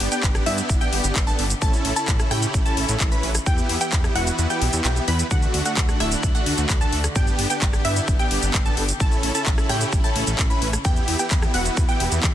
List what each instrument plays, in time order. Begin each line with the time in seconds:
Already playing: string section D3 B3 G4
0.00 analog synth bass G1, open hi-hat
0.12 supersaw synth B3 D4 G4, synth pluck G5, closed hi-hat, shaker
0.23 analog synth bass G1, kick, clap, closed hi-hat, shaker
0.35 cross-stick, closed hi-hat, shaker
0.46 analog synth bass G2, supersaw synth B3 D4 E4, synth pluck E5, open hi-hat
0.58 closed hi-hat, shaker
0.69 analog synth bass G1, kick, closed hi-hat, shaker
0.81 supersaw synth B3 D4 G4, synth pluck G5, closed hi-hat, shaker
0.93 analog synth bass G1, open hi-hat
1.04 analog synth bass G1, closed hi-hat, shaker
1.16 analog synth bass G1, kick, clap, closed hi-hat, shaker
1.27 supersaw synth B3 D4 A4, synth pluck A5, closed hi-hat, shaker
1.39 analog synth bass G1, open hi-hat
1.50 closed hi-hat, shaker
1.62 analog synth bass A1, string section C#3 A3 E4, supersaw synth C#4 E4 A4, synth pluck A5, kick, closed hi-hat, shaker
1.73 closed hi-hat, shaker
1.85 analog synth bass A1, open hi-hat
1.96 supersaw synth C#4 E4 A4, synth pluck A5, closed hi-hat, shaker
2.08 analog synth bass A1, kick, clap, closed hi-hat, shaker
2.20 cross-stick, closed hi-hat, shaker
2.31 analog synth bass A2, supersaw synth C#4 E4 G4, synth pluck G5, cross-stick, open hi-hat
2.43 closed hi-hat, shaker
2.54 analog synth bass A1, kick, closed hi-hat, shaker
2.66 supersaw synth C#4 E4 A4, synth pluck A5, closed hi-hat, shaker
2.77 analog synth bass A1, open hi-hat
2.89 analog synth bass A1, closed hi-hat, shaker
3.00 analog synth bass A1, kick, clap, closed hi-hat, shaker
3.12 supersaw synth C#4 E4 B4, synth pluck B5, closed hi-hat, shaker
3.23 analog synth bass A1, open hi-hat
3.35 cross-stick, closed hi-hat, shaker
3.46 analog synth bass E2, string section E3 G3 B3, supersaw synth B3 E4 G4, synth pluck G5, kick, closed hi-hat, shaker
3.58 closed hi-hat, shaker
3.69 analog synth bass E2, open hi-hat
3.81 supersaw synth B3 E4 G4, synth pluck G5, closed hi-hat, shaker
3.92 analog synth bass E2, kick, clap, closed hi-hat, shaker
4.04 cross-stick, closed hi-hat, shaker
4.15 analog synth bass E1, supersaw synth B3 E4 F#4, synth pluck F#5, open hi-hat
4.27 closed hi-hat, shaker
4.39 analog synth bass E2, closed hi-hat, shaker
4.50 supersaw synth B3 E4 G4, synth pluck G5, closed hi-hat, shaker
4.62 analog synth bass B1, open hi-hat
4.73 analog synth bass E2, closed hi-hat, shaker
4.85 analog synth bass B1, supersaw synth B3 E4 G4, synth pluck G5, clap, closed hi-hat, shaker
4.96 closed hi-hat, shaker
5.08 analog synth bass E2, supersaw synth B3 E4 B4, synth pluck B5, open hi-hat
5.19 closed hi-hat, shaker
5.31 analog synth bass D2, string section D3 A3 F#4, supersaw synth A3 D4 F#4, synth pluck F#5, kick, closed hi-hat, shaker
5.42 closed hi-hat, shaker
5.54 analog synth bass D2, open hi-hat
5.66 supersaw synth A3 D4 F#4, synth pluck F#5, closed hi-hat, shaker
5.77 analog synth bass D2, kick, clap, closed hi-hat, shaker
5.89 cross-stick, closed hi-hat, shaker
6.00 analog synth bass D1, supersaw synth A3 D4 E4, synth pluck E5, cross-stick, open hi-hat
6.12 closed hi-hat, shaker
6.23 analog synth bass D2, kick, closed hi-hat, shaker
6.35 supersaw synth A3 D4 F#4, synth pluck F#5, closed hi-hat, shaker
6.46 analog synth bass D2, open hi-hat
6.58 analog synth bass D2, closed hi-hat, shaker
6.69 analog synth bass D2, kick, clap, closed hi-hat, shaker
6.81 supersaw synth A3 D4 A4, synth pluck A5, closed hi-hat, shaker
6.92 analog synth bass D2, open hi-hat
7.04 cross-stick, closed hi-hat, shaker
7.15 analog synth bass G1, supersaw synth B3 D4 G4, string section B3 G4, synth pluck G5, kick, closed hi-hat, shaker
7.27 closed hi-hat, shaker
7.39 analog synth bass G1, open hi-hat
7.50 supersaw synth B3 D4 G4, synth pluck G5, closed hi-hat, shaker
7.62 analog synth bass G1, kick, clap, closed hi-hat, shaker
7.73 cross-stick, closed hi-hat, shaker
7.85 analog synth bass G2, supersaw synth B3 D4 E4, synth pluck E5, open hi-hat
7.96 closed hi-hat, shaker
8.08 analog synth bass G1, kick, closed hi-hat, shaker
8.19 supersaw synth B3 D4 G4, synth pluck G5, closed hi-hat, shaker
8.31 analog synth bass G1, open hi-hat
8.43 analog synth bass G1, closed hi-hat, shaker
8.54 analog synth bass G1, kick, clap, closed hi-hat, shaker
8.65 supersaw synth B3 D4 A4, synth pluck A5, closed hi-hat, shaker
8.77 analog synth bass G1, open hi-hat
8.89 closed hi-hat, shaker
9.00 analog synth bass A1, string section C#3 A3 E4, supersaw synth C#4 E4 A4, synth pluck A5, kick, closed hi-hat, shaker
9.12 closed hi-hat, shaker
9.23 analog synth bass A1, open hi-hat
9.35 supersaw synth C#4 E4 A4, synth pluck A5, closed hi-hat, shaker
9.46 analog synth bass A1, kick, clap, closed hi-hat, shaker
9.58 cross-stick, closed hi-hat, shaker
9.69 analog synth bass A2, supersaw synth C#4 E4 G4, synth pluck G5, cross-stick, open hi-hat
9.81 closed hi-hat, shaker
9.93 analog synth bass A1, kick, closed hi-hat, shaker
10.04 supersaw synth C#4 E4 A4, synth pluck A5, closed hi-hat, shaker
10.16 analog synth bass A1, open hi-hat
10.27 analog synth bass A1, closed hi-hat, shaker
10.39 analog synth bass A1, kick, clap, closed hi-hat, shaker
10.50 supersaw synth C#4 E4 B4, synth pluck B5, closed hi-hat, shaker
10.62 analog synth bass A1, open hi-hat
10.73 cross-stick, closed hi-hat, shaker
10.85 analog synth bass E2, string section E3 G3 B3, supersaw synth B3 E4 G4, synth pluck G5, kick, closed hi-hat, shaker
10.96 closed hi-hat, shaker
11.08 analog synth bass E2, open hi-hat
11.19 supersaw synth B3 E4 G4, synth pluck G5, closed hi-hat, shaker
11.31 analog synth bass E2, kick, clap, closed hi-hat, shaker
11.42 cross-stick, closed hi-hat, shaker
11.54 analog synth bass E1, supersaw synth B3 E4 F#4, synth pluck F#5, open hi-hat
11.65 closed hi-hat, shaker
11.77 analog synth bass E2, kick, closed hi-hat, shaker
11.89 supersaw synth B3 E4 G4, synth pluck G5, closed hi-hat, shaker
12.00 analog synth bass E1, open hi-hat
12.12 analog synth bass E2, closed hi-hat, shaker
12.23 analog synth bass E2, kick, clap, closed hi-hat, shaker